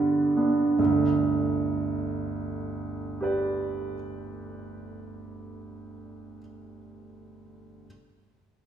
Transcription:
grand piano
Already playing: G2 D3 G3 B3 D4 G4
0.37 B3 D4
0.79 G1 D2
3.21 G4 B4 D5

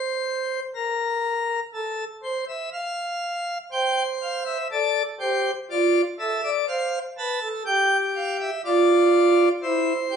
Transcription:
pipe organ
Already playing: C5
0.75 A#4
1.74 A4
2.24 C5
2.49 E5
2.73 F5
3.72 C5 G5
4.22 F5
4.46 E5
4.72 A4 D5
5.20 G4 C5
5.70 F4 D5
6.19 A4 E5
6.44 D5
6.68 C5 F5
7.18 B4 A5
7.42 A4
7.66 G4 G5
8.16 F5
8.41 E5
8.65 F4 D5
9.63 E4 C5
10.11 G4

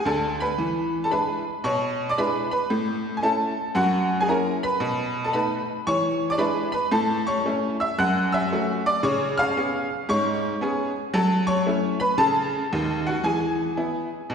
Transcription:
honky-tonk piano
0.06 D2 D3 A4 A5
0.40 B4 B5
0.58 E3
1.04 A4 A5
1.11 G#3 D4 E4 B4 B5
1.64 B2 C#5 C#6
2.09 D5 D6
2.18 G#3 D4 E4 B4 B5
2.51 B4 B5
2.70 A2
3.17 G#5
3.22 A3 C#4 E4 A4 A5
3.75 F#2 F#4 F#5
4.21 G#4 G#5
4.28 A#3 C#4 E4 A#4 A#5
4.63 B4 B5
4.80 B2
5.24 A4 A5
5.33 A3 B3 D#4 B4 B5
5.87 E3 C#5 C#6
6.30 D5 D6
6.38 G#3 D4 E4 B4 B5
6.72 B4 B5
6.91 A2 A4 A5
7.27 C#5 C#6
7.46 A3 C#4 E4
7.80 E5 E6
7.99 F#2 F#5 F#6
8.32 E5 E6
8.52 A3 C#4 F#4
8.86 D5 D6
9.03 C#3 C#5 C#6
9.38 F5 F6
9.57 B3 C#4 G#4
10.09 G#2 C#5 C#6
10.61 B3 C#4 G#4
11.14 F#3 A4 A5
11.47 C#5 C#6
11.67 A3 C#4 E4
12.00 B4 B5
12.18 C#3 A4 A5
12.73 D#2 D#3
13.07 F#4 F#5
13.24 E3 G#4 G#5
13.77 B3 E4
14.30 B2

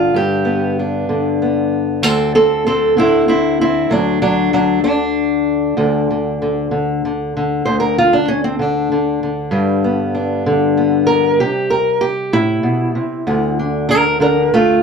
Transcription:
steel-string acoustic guitar
Already playing: G2 D3 G3 F4
0.14 G2 G4
0.45 B3
0.79 D4
1.09 D3
1.42 B3
2.03 D2 C4 A4
2.35 C4 A4
2.67 C4 A4
2.97 D3 C4 E4
3.28 C4 E4
3.61 C4 E4
3.90 D2 F#3 D4
4.22 F#3 D4
4.53 F#3 D4
4.83 D3 D4
5.77 D2 D3
6.11 D3
6.42 D3
6.71 D3
7.05 D3
7.37 D3
7.65 D2 C5
7.80 A#4
7.98 F4
8.13 D4
8.28 C#4
8.44 C4
8.59 D3 D4
8.92 D3
9.23 D3
9.51 G2 G3
9.84 B3
10.15 D4
10.46 D3
10.77 B3
11.07 A#4
11.40 C3 G4
11.70 A#4
12.01 G4
12.33 A2 E4
12.63 B2
12.95 C3
13.27 D2 D3
13.59 D4
13.89 D4 A#4
14.20 D3 D4 A#4
14.54 A3 F4

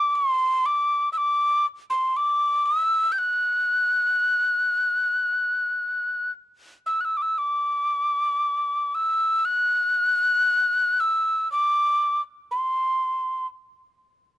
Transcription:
tin whistle
Already playing: D6
0.15 C6
0.66 D6
1.13 E6
1.18 D6
1.90 C6
2.17 D6
2.66 E6
3.12 G6
3.18 F#6
6.86 E6
7.01 F#6
7.05 E6
7.17 D6
7.22 E6
7.38 D6
8.95 E6
9.45 F#6
11.00 E6
11.52 D6
12.51 C6

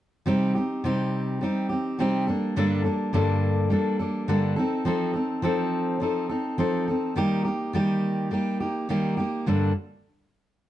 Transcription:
steel-string acoustic guitar
0.26 C3 G3 C4 D#4 G4
0.55 C4 D#4 G4
0.84 C3 G3 C4 D#4 G4
1.41 G3 C4 D#4 G4
1.69 C4 D#4 G4
1.99 C3 G3 C4 D#4 G4
2.27 G3 A#3 D4 A4
2.56 G2 D3 G3 A#3 D4 A4
2.84 G3 A#3 D4 A4
3.13 G2 D3 G3 A#3 D4 A4
3.70 G3 A#3 D4 A4
3.99 G3 A#3 D4 A4
4.28 G2 D3 G3 A#3 D4 A4
4.56 C4 D#4 A4
4.85 F3 C4 D#4 A4
5.13 C4 D#4 A4
5.42 F3 C4 D#4 A4
6.00 F3 C4 D#4 A4
6.29 C4 D#4 A4
6.58 F3 C4 D#4 A4
6.88 C4 D#4 A4
7.16 D#3 G3 A#3 D#4 G4
7.44 A#3 D#4 G4
7.73 D#3 G3 A#3 D#4 G4
8.31 G3 A#3 D#4 G4
8.60 A#3 D#4 G4
8.89 D#3 G3 A#3 D#4 G4
9.17 A#3 D#4 G4
9.46 G2 D3 G3 A#3 D4 A4

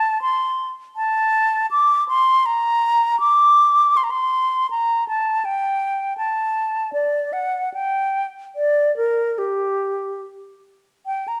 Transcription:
flute
Already playing: A5
0.22 C6
0.96 A5
1.71 D6
2.09 C6
2.46 A#5
3.20 D6
3.97 C6
4.04 A#5
4.11 C6
4.71 A#5
5.09 A5
5.45 G5
6.18 A5
6.93 D5
7.33 F#5
7.74 G5
8.56 D5
8.97 A#4
9.38 G4
11.06 G5
11.28 A#5

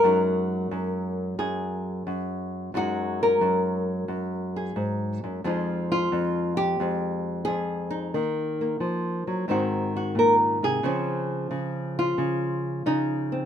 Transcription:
nylon-string guitar
Already playing: A#4
0.04 F#2 F#3 G#3 D#4
0.71 F#2
1.39 F#2 G#4
2.07 F#2
2.74 F#2 F#3 G#3 D#4 F#4
3.23 A#4
3.41 F#2
4.08 F#2
4.56 G#4
4.76 G#2
5.24 F#2
5.44 F2 F3 G#3 D#4 F4
5.92 F4
6.12 F2
6.57 G4
6.80 F2 G#3
7.45 F2 G#4
7.90 D#4
8.14 D#3 A#3
8.61 A#3
8.80 F3
9.27 F#3
9.48 G#2 D#3 C4 D#4 F#4
9.96 F#4
10.15 A#2
10.19 A#4
10.63 C3 G#4
10.83 C#3 F3 C4 C#4
11.51 C#3
11.99 F4
12.18 C#3
12.86 C#3 D#4
13.32 C4

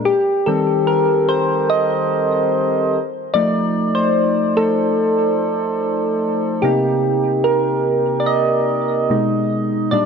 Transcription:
synth keys
Already playing: A#4
0.05 G4
0.46 D#3 G3 C4 A4
0.87 A#4
1.29 C5
1.70 D#5
3.34 F3 A3 D#4 D5
3.95 C5
4.57 F3 A3 D#4 A4
6.62 C3 A#3 D#4 G4
7.44 A#4
8.20 D5
8.26 D#5
9.10 B2 G#3 D#4
9.91 A#2 G3 D4 D5

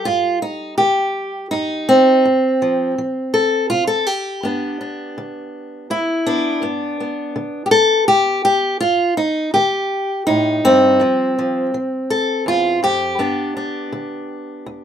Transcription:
steel-string acoustic guitar
Already playing: G3
0.05 G2 F4
0.42 D#4
0.78 D#3 G4
1.51 G2 D#4
1.89 C4
2.25 F2
2.62 F3
2.98 F3
3.34 A4
3.70 C3 F4
3.87 A4
4.07 G4
4.43 G2 B3 D4
4.81 D4
5.18 D3
5.90 D2 E4
6.27 B3 D4
6.62 G2 B3
7.00 B3
7.36 D3
7.66 G4
7.71 A4
8.08 D2 G4
8.45 G4
8.80 G2 F4
9.17 D#4
9.54 D#3 G4
10.27 A2 D#4
10.64 G2 C4
11.00 F2 F3
11.39 F3
11.74 F3
12.10 A4
12.46 E2 F4
12.83 F2 G4
13.19 G2 B3 D4
13.57 D4
13.93 D3
14.66 D2

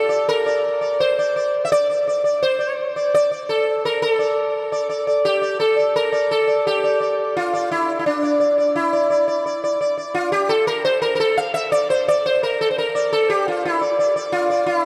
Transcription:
sitar
Already playing: A4
0.09 D5
0.29 A#4
0.46 D5
0.81 D5
1.00 C5
1.19 D5
1.36 D5
1.65 E5
1.72 D5
1.90 D5
2.07 D5
2.24 D5
2.43 C5
2.59 D5
2.96 D5
3.15 D5
3.32 D5
3.49 A4
3.85 A#4
4.02 A4
4.19 D5
4.72 D5
4.89 D5
5.07 D5
5.25 G4
5.42 D5
5.60 A4
5.76 D5
5.96 A#4
6.12 D5
6.31 A4
6.48 D5
6.67 G4
6.84 D5
7.00 D5
7.37 F4
7.54 D5
7.71 E4
7.99 E4
8.06 D4
8.23 D5
8.40 D5
8.58 D5
8.76 E4
8.93 D5
9.10 D5
9.28 D5
9.46 D5
9.64 D5
9.81 D5
9.97 D5
10.15 F4
10.32 G4
10.49 A4
10.67 A#4
10.85 C5
11.02 A#4
11.15 A#4
11.20 A4
11.37 F5
11.54 E5
11.72 D5
11.90 C5
12.08 D5
12.26 C5
12.43 A#4
12.61 A4
12.71 C5
12.78 A#4
12.95 D5
13.13 A4
13.30 G4
13.48 F4
13.65 E4
13.81 D5
13.99 D5
14.16 D5
14.32 F4
14.50 D5
14.66 E4

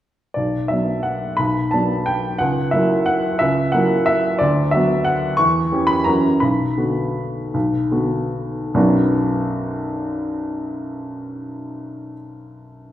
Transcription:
upright piano
0.34 B1 D5
0.68 F#3 B3 D4 E5
1.03 F#5
1.37 B1 B5
1.71 F#3 B3 D4 A5
2.06 G5
2.38 C#2 F#5
2.71 F#3 A#3 E4 E5
3.06 F#5
3.39 C#2 E5
3.72 F#3 A#3 E4 F#5
4.06 E5
4.39 D2 D5
4.71 F#3 B3 F#4 E5
5.05 F#5
5.37 E2 C#6
5.72 E3 C#4 G4
5.87 B5
6.04 F#2 E3 C#4 F#4 A#5
6.40 B1 B5
6.77 D3 B3 F#4
7.54 B1
7.91 D3 B3 F#4
8.74 B1 F#2 F#3 B3 D4 F#4

